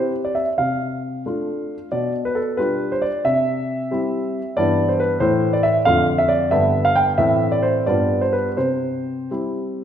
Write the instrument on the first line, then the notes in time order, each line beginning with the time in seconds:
grand piano
Already playing: C4 E4 G4 C5
0.25 D5
0.35 E5
0.58 C3 F5
1.26 A3 D4 F4
1.92 B2 D5
2.25 B4
2.35 A4
2.57 G3 D4 F4 B4
2.92 C5
3.02 D5
3.25 C3 E5
3.91 G3 C4 E4
4.57 G2 E3 B3 E4 D5
4.89 C5
5.00 B4
5.20 A2 E3 A3 E4 C5
5.53 D5
5.63 E5
5.85 F2 D3 A3 F4 F5
6.18 E5
6.28 D5
6.51 G2 D3 B3 D4 E5
6.85 F5
6.96 G5
7.18 A2 E3 A3 C4 E5
7.52 D5
7.62 C5
7.86 G2 G3 B3 F4 D5
8.21 C5
8.33 B4
8.57 C3 C5
9.31 G3 C4 E4